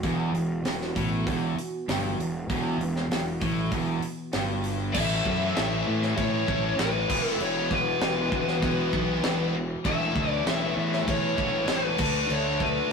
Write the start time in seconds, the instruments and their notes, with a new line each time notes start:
Already playing: analog synth pad E3 B3 F#4
0.03 fingered electric bass E1, overdriven electric guitar E2, kick, open hi-hat
0.34 fingered electric bass E1, overdriven electric guitar E2, open hi-hat
0.65 fingered electric bass E1, overdriven electric guitar E2, snare, open hi-hat
0.82 snare
0.96 fingered electric bass A1, overdriven electric guitar A2, kick, open hi-hat
1.27 fingered electric bass E1, overdriven electric guitar E2, kick, open hi-hat
1.57 muted fingered electric bass stroke, muted overdriven electric guitar stroke, open hi-hat
1.88 fingered electric bass G1, overdriven electric guitar G2, snare, open hi-hat
2.19 fingered electric bass E1, overdriven electric guitar E2, open hi-hat
2.50 fingered electric bass E1, overdriven electric guitar E2, kick, open hi-hat
2.80 fingered electric bass E1, overdriven electric guitar E2, open hi-hat
2.96 snare
3.11 fingered electric bass E1, overdriven electric guitar E2, snare, open hi-hat
3.41 fingered electric bass A1, overdriven electric guitar A2, kick, open hi-hat
3.71 fingered electric bass E1, overdriven electric guitar E2, kick, open hi-hat
4.02 muted overdriven electric guitar stroke, muted fingered electric bass stroke, open hi-hat
4.33 fingered electric bass G1, overdriven electric guitar G2, snare, open hi-hat
4.64 open hi-hat
4.92 fingered electric bass A1, distorted electric guitar A2 E3 A3 C#4, overdriven electric guitar A2, analog synth pad A3 E4 B4, lead electric guitar E5, kick, crash
4.96 overdriven electric guitar E3 A3, distorted electric guitar E4
5.25 fingered electric bass F#2, kick
5.55 fingered electric bass A1, lead electric guitar E5, snare, crash
5.87 fingered electric bass A2
6.03 snare
6.17 fingered electric bass A2, lead electric guitar C#5, kick, crash
6.47 fingered electric bass A1, distorted electric guitar A2 E3 A3 C#4 E4, kick
6.78 fingered electric bass A1, distorted electric guitar A2 E3 A3 C#4 E4, lead electric guitar B4, snare, crash
7.08 fingered electric bass E1, overdriven electric guitar E2 B2, distorted electric guitar E3 G#3 B3 E4, analog synth pad E3 B3 F#4, kick, crash
7.12 overdriven electric guitar E3
7.28 lead electric guitar A4
7.40 fingered electric bass E1, lead electric guitar C#5, crash
7.71 lead electric guitar B4, kick
8.01 fingered electric bass E1, snare, crash
8.32 fingered electric bass E1, kick
8.48 snare
8.61 fingered electric bass E1, distorted electric guitar E3 G#3 B3 E4, kick, crash
8.93 fingered electric bass B1, distorted electric guitar E3 G#3 B3 E4, kick
9.23 fingered electric bass E1, snare, crash
9.84 fingered electric bass E1, overdriven electric guitar A2 E3 A3, distorted electric guitar E3 A3 C#4, analog synth pad A3 E4 B4, lead electric guitar E5, kick, crash
9.89 distorted electric guitar E4
10.15 fingered electric bass D2, kick
10.30 lead electric guitar D5
10.46 fingered electric bass E1, lead electric guitar E5, snare, crash
10.76 fingered electric bass E2
10.93 snare
11.08 fingered electric bass E2, lead electric guitar C#5, kick, crash
11.37 fingered electric bass E1, distorted electric guitar A3 C#4 E4, kick
11.41 distorted electric guitar E3
11.68 fingered electric bass E1, distorted electric guitar E3 A3, lead electric guitar B4, snare, crash
11.72 distorted electric guitar C#4 E4
11.98 fingered electric bass D2, distorted electric guitar D3 A3 D4, overdriven electric guitar D3 A3 D4, analog synth pad D4 A4 E5, kick, crash
12.02 distorted electric guitar F#4
12.30 fingered electric bass D2, lead electric guitar C#5, crash
12.60 lead electric guitar B4, kick